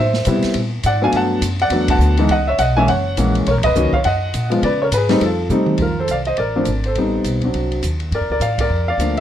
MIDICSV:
0, 0, Header, 1, 5, 480
1, 0, Start_track
1, 0, Tempo, 290980
1, 1871, Time_signature, 4, 2, 24, 8
1, 15178, End_track
2, 0, Start_track
2, 0, Title_t, "Grand piano"
2, 0, Program_c, 0, 0
2, 0, Note_on_c, 0, 72, 62
2, 0, Note_on_c, 0, 76, 77
2, 438, Note_on_c, 0, 55, 56
2, 441, Note_on_c, 0, 59, 50
2, 452, Note_on_c, 0, 60, 51
2, 462, Note_on_c, 0, 64, 60
2, 848, Note_off_c, 0, 76, 0
2, 858, Note_off_c, 0, 72, 0
2, 914, Note_off_c, 0, 55, 0
2, 916, Note_off_c, 0, 59, 0
2, 921, Note_off_c, 0, 60, 0
2, 926, Note_off_c, 0, 64, 0
2, 1422, Note_on_c, 0, 78, 85
2, 1434, Note_on_c, 0, 74, 68
2, 1673, Note_on_c, 0, 57, 54
2, 1674, Note_off_c, 0, 78, 0
2, 1679, Note_on_c, 0, 54, 59
2, 1679, Note_on_c, 0, 59, 53
2, 1681, Note_off_c, 0, 74, 0
2, 1684, Note_on_c, 0, 62, 62
2, 1713, Note_on_c, 0, 80, 86
2, 1723, Note_on_c, 0, 77, 63
2, 1876, Note_off_c, 0, 80, 0
2, 1882, Note_off_c, 0, 77, 0
2, 1913, Note_on_c, 0, 81, 88
2, 1917, Note_on_c, 0, 78, 73
2, 2310, Note_off_c, 0, 57, 0
2, 2313, Note_off_c, 0, 54, 0
2, 2313, Note_off_c, 0, 59, 0
2, 2316, Note_off_c, 0, 62, 0
2, 2340, Note_off_c, 0, 81, 0
2, 2342, Note_off_c, 0, 78, 0
2, 2666, Note_on_c, 0, 78, 97
2, 2677, Note_on_c, 0, 74, 76
2, 2821, Note_on_c, 0, 54, 57
2, 2834, Note_on_c, 0, 57, 50
2, 2837, Note_on_c, 0, 59, 53
2, 2842, Note_on_c, 0, 62, 64
2, 3106, Note_off_c, 0, 74, 0
2, 3128, Note_off_c, 0, 78, 0
2, 3136, Note_on_c, 0, 81, 94
2, 3152, Note_on_c, 0, 78, 75
2, 3536, Note_off_c, 0, 54, 0
2, 3543, Note_off_c, 0, 57, 0
2, 3544, Note_off_c, 0, 59, 0
2, 3546, Note_off_c, 0, 62, 0
2, 3608, Note_on_c, 0, 52, 60
2, 3612, Note_on_c, 0, 56, 55
2, 3614, Note_on_c, 0, 59, 53
2, 3629, Note_on_c, 0, 63, 67
2, 3763, Note_off_c, 0, 78, 0
2, 3777, Note_off_c, 0, 52, 0
2, 3779, Note_off_c, 0, 56, 0
2, 3780, Note_off_c, 0, 59, 0
2, 3787, Note_off_c, 0, 63, 0
2, 3812, Note_on_c, 0, 78, 85
2, 3820, Note_off_c, 0, 81, 0
2, 3825, Note_on_c, 0, 75, 71
2, 4069, Note_off_c, 0, 78, 0
2, 4077, Note_off_c, 0, 75, 0
2, 4083, Note_on_c, 0, 76, 84
2, 4109, Note_on_c, 0, 73, 67
2, 4269, Note_on_c, 0, 78, 87
2, 4274, Note_off_c, 0, 73, 0
2, 4280, Note_off_c, 0, 76, 0
2, 4309, Note_on_c, 0, 75, 64
2, 4537, Note_off_c, 0, 78, 0
2, 4559, Note_off_c, 0, 75, 0
2, 4562, Note_on_c, 0, 80, 90
2, 4570, Note_on_c, 0, 52, 65
2, 4572, Note_on_c, 0, 56, 58
2, 4581, Note_on_c, 0, 61, 77
2, 4582, Note_on_c, 0, 58, 59
2, 4598, Note_on_c, 0, 76, 70
2, 4738, Note_off_c, 0, 52, 0
2, 4739, Note_off_c, 0, 56, 0
2, 4744, Note_off_c, 0, 58, 0
2, 4744, Note_off_c, 0, 61, 0
2, 4759, Note_off_c, 0, 76, 0
2, 4759, Note_off_c, 0, 80, 0
2, 4761, Note_on_c, 0, 78, 93
2, 4797, Note_on_c, 0, 73, 70
2, 5237, Note_on_c, 0, 52, 56
2, 5240, Note_on_c, 0, 58, 53
2, 5244, Note_on_c, 0, 56, 50
2, 5251, Note_on_c, 0, 61, 64
2, 5470, Note_off_c, 0, 78, 0
2, 5489, Note_off_c, 0, 73, 0
2, 5715, Note_off_c, 0, 52, 0
2, 5716, Note_off_c, 0, 58, 0
2, 5718, Note_off_c, 0, 56, 0
2, 5722, Note_off_c, 0, 61, 0
2, 5737, Note_on_c, 0, 73, 83
2, 5782, Note_on_c, 0, 70, 66
2, 5819, Note_off_c, 0, 73, 0
2, 5865, Note_off_c, 0, 70, 0
2, 6001, Note_on_c, 0, 75, 100
2, 6040, Note_on_c, 0, 71, 67
2, 6193, Note_on_c, 0, 51, 52
2, 6196, Note_on_c, 0, 54, 48
2, 6201, Note_on_c, 0, 58, 48
2, 6215, Note_on_c, 0, 61, 60
2, 6446, Note_off_c, 0, 75, 0
2, 6451, Note_off_c, 0, 51, 0
2, 6452, Note_off_c, 0, 54, 0
2, 6455, Note_off_c, 0, 58, 0
2, 6462, Note_off_c, 0, 61, 0
2, 6467, Note_off_c, 0, 71, 0
2, 6489, Note_on_c, 0, 77, 84
2, 6521, Note_on_c, 0, 73, 66
2, 6572, Note_off_c, 0, 77, 0
2, 6598, Note_off_c, 0, 73, 0
2, 6682, Note_on_c, 0, 78, 86
2, 6710, Note_on_c, 0, 75, 67
2, 7390, Note_off_c, 0, 78, 0
2, 7405, Note_off_c, 0, 75, 0
2, 7425, Note_on_c, 0, 53, 54
2, 7431, Note_on_c, 0, 56, 49
2, 7449, Note_on_c, 0, 59, 51
2, 7450, Note_on_c, 0, 65, 55
2, 7605, Note_off_c, 0, 53, 0
2, 7609, Note_off_c, 0, 56, 0
2, 7618, Note_off_c, 0, 59, 0
2, 7618, Note_off_c, 0, 65, 0
2, 7653, Note_on_c, 0, 74, 81
2, 7679, Note_on_c, 0, 71, 60
2, 7924, Note_off_c, 0, 71, 0
2, 7937, Note_off_c, 0, 74, 0
2, 7949, Note_on_c, 0, 73, 78
2, 7983, Note_on_c, 0, 70, 61
2, 8029, Note_off_c, 0, 73, 0
2, 8055, Note_off_c, 0, 70, 0
2, 8146, Note_on_c, 0, 71, 79
2, 8201, Note_on_c, 0, 68, 58
2, 8401, Note_on_c, 0, 57, 66
2, 8406, Note_on_c, 0, 55, 76
2, 8415, Note_on_c, 0, 63, 86
2, 8420, Note_on_c, 0, 60, 72
2, 8574, Note_off_c, 0, 57, 0
2, 8576, Note_off_c, 0, 55, 0
2, 8581, Note_off_c, 0, 63, 0
2, 8583, Note_off_c, 0, 60, 0
2, 8606, Note_off_c, 0, 68, 0
2, 8623, Note_off_c, 0, 71, 0
2, 8623, Note_on_c, 0, 69, 70
2, 8651, Note_on_c, 0, 65, 51
2, 9055, Note_off_c, 0, 69, 0
2, 9070, Note_off_c, 0, 65, 0
2, 9076, Note_on_c, 0, 55, 55
2, 9084, Note_on_c, 0, 57, 50
2, 9097, Note_on_c, 0, 63, 63
2, 9098, Note_on_c, 0, 60, 53
2, 9554, Note_off_c, 0, 55, 0
2, 9558, Note_off_c, 0, 57, 0
2, 9564, Note_off_c, 0, 63, 0
2, 9565, Note_off_c, 0, 60, 0
2, 9591, Note_on_c, 0, 65, 52
2, 9601, Note_on_c, 0, 70, 67
2, 9840, Note_off_c, 0, 65, 0
2, 9845, Note_off_c, 0, 70, 0
2, 9888, Note_on_c, 0, 72, 70
2, 9905, Note_on_c, 0, 69, 55
2, 10054, Note_off_c, 0, 69, 0
2, 10062, Note_off_c, 0, 72, 0
2, 10082, Note_on_c, 0, 77, 82
2, 10104, Note_on_c, 0, 74, 60
2, 10164, Note_off_c, 0, 77, 0
2, 10186, Note_off_c, 0, 74, 0
2, 10340, Note_on_c, 0, 75, 73
2, 10357, Note_on_c, 0, 72, 62
2, 10509, Note_off_c, 0, 75, 0
2, 10519, Note_off_c, 0, 72, 0
2, 10519, Note_on_c, 0, 74, 75
2, 10548, Note_on_c, 0, 70, 58
2, 10817, Note_on_c, 0, 57, 50
2, 10818, Note_on_c, 0, 60, 53
2, 10819, Note_on_c, 0, 53, 61
2, 10826, Note_on_c, 0, 62, 63
2, 10982, Note_off_c, 0, 57, 0
2, 10983, Note_off_c, 0, 53, 0
2, 10983, Note_off_c, 0, 60, 0
2, 10986, Note_off_c, 0, 62, 0
2, 11245, Note_off_c, 0, 70, 0
2, 11306, Note_off_c, 0, 74, 0
2, 11310, Note_on_c, 0, 72, 65
2, 11348, Note_on_c, 0, 69, 50
2, 11509, Note_on_c, 0, 59, 41
2, 11511, Note_on_c, 0, 55, 43
2, 11520, Note_on_c, 0, 63, 51
2, 11524, Note_on_c, 0, 60, 43
2, 11922, Note_off_c, 0, 72, 0
2, 11942, Note_off_c, 0, 69, 0
2, 12200, Note_off_c, 0, 59, 0
2, 12201, Note_off_c, 0, 55, 0
2, 12206, Note_off_c, 0, 63, 0
2, 12208, Note_off_c, 0, 60, 0
2, 12266, Note_on_c, 0, 60, 43
2, 12270, Note_on_c, 0, 54, 46
2, 12272, Note_on_c, 0, 62, 43
2, 12284, Note_on_c, 0, 66, 50
2, 12887, Note_off_c, 0, 60, 0
2, 12889, Note_off_c, 0, 54, 0
2, 12890, Note_off_c, 0, 62, 0
2, 12896, Note_off_c, 0, 66, 0
2, 13437, Note_on_c, 0, 74, 71
2, 13443, Note_on_c, 0, 70, 58
2, 13684, Note_off_c, 0, 74, 0
2, 13687, Note_off_c, 0, 70, 0
2, 13718, Note_on_c, 0, 74, 76
2, 13722, Note_on_c, 0, 70, 56
2, 13871, Note_off_c, 0, 74, 0
2, 13882, Note_off_c, 0, 70, 0
2, 13888, Note_on_c, 0, 77, 80
2, 13896, Note_on_c, 0, 74, 65
2, 14148, Note_off_c, 0, 77, 0
2, 14152, Note_off_c, 0, 74, 0
2, 14196, Note_on_c, 0, 70, 61
2, 14196, Note_on_c, 0, 74, 79
2, 14625, Note_off_c, 0, 70, 0
2, 14651, Note_on_c, 0, 77, 85
2, 14654, Note_off_c, 0, 74, 0
2, 14679, Note_on_c, 0, 74, 68
2, 14838, Note_on_c, 0, 53, 41
2, 14848, Note_on_c, 0, 57, 37
2, 14848, Note_on_c, 0, 58, 38
2, 14854, Note_on_c, 0, 62, 45
2, 15107, Note_off_c, 0, 74, 0
2, 15139, Note_off_c, 0, 77, 0
2, 15178, Note_off_c, 0, 53, 0
2, 15178, Note_off_c, 0, 57, 0
2, 15178, Note_off_c, 0, 58, 0
2, 15178, Note_off_c, 0, 62, 0
2, 15178, End_track
3, 0, Start_track
3, 0, Title_t, "Upright bass"
3, 0, Program_c, 1, 32
3, 0, Note_on_c, 1, 45, 80
3, 412, Note_off_c, 1, 45, 0
3, 442, Note_on_c, 1, 48, 77
3, 703, Note_off_c, 1, 48, 0
3, 904, Note_on_c, 1, 46, 69
3, 1373, Note_off_c, 1, 46, 0
3, 1383, Note_on_c, 1, 44, 76
3, 1847, Note_off_c, 1, 44, 0
3, 1857, Note_on_c, 1, 43, 77
3, 2324, Note_off_c, 1, 43, 0
3, 2334, Note_on_c, 1, 42, 76
3, 2793, Note_off_c, 1, 42, 0
3, 2803, Note_on_c, 1, 40, 76
3, 3270, Note_off_c, 1, 40, 0
3, 3279, Note_on_c, 1, 38, 84
3, 3761, Note_off_c, 1, 38, 0
3, 3770, Note_on_c, 1, 37, 80
3, 4246, Note_off_c, 1, 37, 0
3, 4265, Note_on_c, 1, 35, 83
3, 4734, Note_off_c, 1, 35, 0
3, 4744, Note_on_c, 1, 30, 71
3, 5213, Note_off_c, 1, 30, 0
3, 5235, Note_on_c, 1, 34, 75
3, 5699, Note_off_c, 1, 34, 0
3, 5722, Note_on_c, 1, 35, 82
3, 5896, Note_off_c, 1, 35, 0
3, 5896, Note_on_c, 1, 34, 51
3, 6037, Note_off_c, 1, 34, 0
3, 6047, Note_on_c, 1, 30, 60
3, 6189, Note_off_c, 1, 30, 0
3, 6198, Note_on_c, 1, 37, 84
3, 6462, Note_off_c, 1, 37, 0
3, 6683, Note_on_c, 1, 42, 70
3, 7143, Note_off_c, 1, 42, 0
3, 7163, Note_on_c, 1, 46, 79
3, 7623, Note_off_c, 1, 46, 0
3, 7634, Note_on_c, 1, 49, 81
3, 8098, Note_off_c, 1, 49, 0
3, 8108, Note_on_c, 1, 44, 78
3, 8575, Note_off_c, 1, 44, 0
3, 8593, Note_on_c, 1, 41, 74
3, 9058, Note_off_c, 1, 41, 0
3, 9067, Note_on_c, 1, 48, 76
3, 9535, Note_off_c, 1, 48, 0
3, 9544, Note_on_c, 1, 41, 65
3, 10013, Note_off_c, 1, 41, 0
3, 10039, Note_on_c, 1, 36, 72
3, 10502, Note_off_c, 1, 36, 0
3, 10518, Note_on_c, 1, 33, 61
3, 10981, Note_off_c, 1, 33, 0
3, 10996, Note_on_c, 1, 32, 70
3, 11460, Note_off_c, 1, 32, 0
3, 11482, Note_on_c, 1, 33, 64
3, 11943, Note_off_c, 1, 33, 0
3, 11950, Note_on_c, 1, 35, 70
3, 12417, Note_off_c, 1, 35, 0
3, 12442, Note_on_c, 1, 36, 62
3, 12903, Note_off_c, 1, 36, 0
3, 12915, Note_on_c, 1, 39, 75
3, 13376, Note_off_c, 1, 39, 0
3, 13385, Note_on_c, 1, 43, 71
3, 13535, Note_on_c, 1, 41, 46
3, 13560, Note_off_c, 1, 43, 0
3, 13678, Note_off_c, 1, 41, 0
3, 13688, Note_on_c, 1, 38, 53
3, 13848, Note_off_c, 1, 38, 0
3, 13855, Note_on_c, 1, 45, 78
3, 14329, Note_off_c, 1, 45, 0
3, 14347, Note_on_c, 1, 41, 67
3, 14799, Note_off_c, 1, 41, 0
3, 14809, Note_on_c, 1, 38, 70
3, 15178, Note_off_c, 1, 38, 0
3, 15178, End_track
4, 0, Start_track
4, 0, Title_t, "Muted upright bass strokes"
4, 725, Note_on_c, 9, 29, 33
4, 890, Note_off_c, 9, 29, 0
4, 6473, Note_on_c, 9, 29, 34
4, 6638, Note_off_c, 9, 29, 0
4, 15178, End_track
5, 0, Start_track
5, 0, Title_t, "Drums"
5, 225, Note_on_c, 9, 38, 42
5, 390, Note_off_c, 9, 38, 0
5, 411, Note_on_c, 9, 44, 52
5, 411, Note_on_c, 9, 51, 63
5, 576, Note_off_c, 9, 44, 0
5, 576, Note_off_c, 9, 51, 0
5, 700, Note_on_c, 9, 51, 44
5, 702, Note_on_c, 9, 38, 33
5, 865, Note_off_c, 9, 51, 0
5, 867, Note_off_c, 9, 38, 0
5, 888, Note_on_c, 9, 51, 58
5, 1053, Note_off_c, 9, 51, 0
5, 1375, Note_on_c, 9, 44, 56
5, 1375, Note_on_c, 9, 51, 60
5, 1540, Note_off_c, 9, 44, 0
5, 1540, Note_off_c, 9, 51, 0
5, 1854, Note_on_c, 9, 51, 58
5, 2019, Note_off_c, 9, 51, 0
5, 2339, Note_on_c, 9, 44, 53
5, 2339, Note_on_c, 9, 51, 64
5, 2504, Note_off_c, 9, 44, 0
5, 2504, Note_off_c, 9, 51, 0
5, 2628, Note_on_c, 9, 51, 42
5, 2793, Note_off_c, 9, 51, 0
5, 2805, Note_on_c, 9, 51, 59
5, 2970, Note_off_c, 9, 51, 0
5, 3103, Note_on_c, 9, 51, 70
5, 3106, Note_on_c, 9, 36, 81
5, 3268, Note_off_c, 9, 51, 0
5, 3271, Note_off_c, 9, 36, 0
5, 3302, Note_on_c, 9, 44, 46
5, 3467, Note_off_c, 9, 44, 0
5, 3584, Note_on_c, 9, 51, 45
5, 3749, Note_off_c, 9, 51, 0
5, 3775, Note_on_c, 9, 51, 51
5, 3940, Note_off_c, 9, 51, 0
5, 4262, Note_on_c, 9, 44, 48
5, 4262, Note_on_c, 9, 51, 61
5, 4427, Note_off_c, 9, 44, 0
5, 4427, Note_off_c, 9, 51, 0
5, 4750, Note_on_c, 9, 51, 53
5, 4915, Note_off_c, 9, 51, 0
5, 5231, Note_on_c, 9, 44, 49
5, 5231, Note_on_c, 9, 51, 55
5, 5396, Note_off_c, 9, 44, 0
5, 5396, Note_off_c, 9, 51, 0
5, 5527, Note_on_c, 9, 51, 44
5, 5692, Note_off_c, 9, 51, 0
5, 5714, Note_on_c, 9, 51, 51
5, 5879, Note_off_c, 9, 51, 0
5, 5987, Note_on_c, 9, 51, 65
5, 5996, Note_on_c, 9, 36, 67
5, 6152, Note_off_c, 9, 51, 0
5, 6161, Note_off_c, 9, 36, 0
5, 6190, Note_on_c, 9, 44, 55
5, 6355, Note_off_c, 9, 44, 0
5, 6479, Note_on_c, 9, 36, 63
5, 6644, Note_off_c, 9, 36, 0
5, 6663, Note_on_c, 9, 51, 57
5, 6828, Note_off_c, 9, 51, 0
5, 7153, Note_on_c, 9, 44, 51
5, 7153, Note_on_c, 9, 51, 57
5, 7318, Note_off_c, 9, 44, 0
5, 7318, Note_off_c, 9, 51, 0
5, 7447, Note_on_c, 9, 51, 44
5, 7612, Note_off_c, 9, 51, 0
5, 7636, Note_on_c, 9, 51, 52
5, 7801, Note_off_c, 9, 51, 0
5, 8112, Note_on_c, 9, 44, 56
5, 8112, Note_on_c, 9, 51, 68
5, 8277, Note_off_c, 9, 44, 0
5, 8277, Note_off_c, 9, 51, 0
5, 8397, Note_on_c, 9, 51, 43
5, 8399, Note_on_c, 9, 38, 47
5, 8562, Note_off_c, 9, 51, 0
5, 8564, Note_off_c, 9, 38, 0
5, 8595, Note_on_c, 9, 51, 53
5, 8760, Note_off_c, 9, 51, 0
5, 9068, Note_on_c, 9, 44, 54
5, 9233, Note_off_c, 9, 44, 0
5, 9343, Note_on_c, 9, 47, 59
5, 9508, Note_off_c, 9, 47, 0
5, 9528, Note_on_c, 9, 51, 52
5, 9542, Note_on_c, 9, 36, 52
5, 9693, Note_off_c, 9, 51, 0
5, 9707, Note_off_c, 9, 36, 0
5, 10024, Note_on_c, 9, 44, 47
5, 10024, Note_on_c, 9, 51, 49
5, 10189, Note_off_c, 9, 44, 0
5, 10189, Note_off_c, 9, 51, 0
5, 10312, Note_on_c, 9, 51, 36
5, 10477, Note_off_c, 9, 51, 0
5, 10501, Note_on_c, 9, 51, 42
5, 10666, Note_off_c, 9, 51, 0
5, 10972, Note_on_c, 9, 44, 41
5, 10972, Note_on_c, 9, 51, 52
5, 11137, Note_off_c, 9, 44, 0
5, 11137, Note_off_c, 9, 51, 0
5, 11278, Note_on_c, 9, 51, 36
5, 11443, Note_off_c, 9, 51, 0
5, 11470, Note_on_c, 9, 51, 47
5, 11635, Note_off_c, 9, 51, 0
5, 11948, Note_on_c, 9, 44, 49
5, 11948, Note_on_c, 9, 51, 48
5, 12113, Note_off_c, 9, 44, 0
5, 12113, Note_off_c, 9, 51, 0
5, 12231, Note_on_c, 9, 51, 35
5, 12237, Note_on_c, 9, 36, 36
5, 12396, Note_off_c, 9, 51, 0
5, 12402, Note_off_c, 9, 36, 0
5, 12433, Note_on_c, 9, 51, 45
5, 12598, Note_off_c, 9, 51, 0
5, 12728, Note_on_c, 9, 51, 36
5, 12893, Note_off_c, 9, 51, 0
5, 12909, Note_on_c, 9, 44, 50
5, 12909, Note_on_c, 9, 51, 52
5, 13074, Note_off_c, 9, 44, 0
5, 13074, Note_off_c, 9, 51, 0
5, 13193, Note_on_c, 9, 51, 36
5, 13358, Note_off_c, 9, 51, 0
5, 13397, Note_on_c, 9, 51, 41
5, 13562, Note_off_c, 9, 51, 0
5, 13871, Note_on_c, 9, 44, 48
5, 13871, Note_on_c, 9, 51, 50
5, 14036, Note_off_c, 9, 44, 0
5, 14036, Note_off_c, 9, 51, 0
5, 14157, Note_on_c, 9, 36, 66
5, 14163, Note_on_c, 9, 51, 61
5, 14322, Note_off_c, 9, 36, 0
5, 14328, Note_off_c, 9, 51, 0
5, 14839, Note_on_c, 9, 44, 50
5, 14839, Note_on_c, 9, 51, 53
5, 15004, Note_off_c, 9, 44, 0
5, 15004, Note_off_c, 9, 51, 0
5, 15178, End_track
0, 0, End_of_file